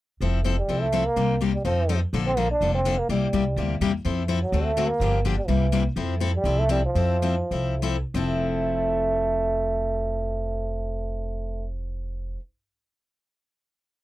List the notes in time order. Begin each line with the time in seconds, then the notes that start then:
0.21 F1 F3 C4 E4 A4
0.44 F3 C4 E4 A4
0.58 G3
0.68 C2 F3 C4 E4 A4
0.81 A3
0.92 F3 C4 E4 A4
1.06 A#3
1.16 C2 C3 G3 A#3 D#4 G4
1.41 C3 G3 A#3 D#4 G4
1.54 G3
1.65 F2 F3 C4 D#4 A4
1.89 F3 C4 D#4 A4
2.13 A#1 D3 F3 A#3 D4 A4
2.26 C4
2.37 D3 F3 A#3 D4 A4
2.51 D4
2.61 F1 D3 F3 A#3 D4 A4
2.74 C4
2.85 D3 F3 A#3 D4 A4
2.98 A#3
3.09 C2 C3 G3 A#3 E4 G4
3.33 C2 C3 G3 A#3 E4 G4
3.56 D2 C3 G3 A#3 E4 G4
3.81 E2 C3 G3 A#3 E4 G4
4.05 F2 F3 C4 E4 A4
4.28 F3 C4 E4 A4
4.42 F#3
4.52 D2 D3 A3 C4 F#4 A4
4.64 A3
4.77 D3 A3 C4 F#4 A4
4.88 A#3
5.00 G1 D3 F3 A#3 D4 G4
5.25 D3 F3 A#3 D4 G4
5.37 G3
5.47 C2 C3 E3 G3 A#3 E4 G4
5.72 C3 G3 A#3 E4 G4
5.96 F2 F3 C4 E4 A4
6.20 F3 C4 E4 A4
6.36 G3
6.44 C2 F3 C4 E4 A4
6.60 A3
6.69 F3 G3 C4 E4 A4
6.85 F3
6.95 F2 F3 C4 E4 A4
7.22 F3 C4 E4 A4
7.51 C2 F3 C4 E4 A4
7.82 F3 C4 E4 A4
8.14 F1 F3 A3 C4 E4 A4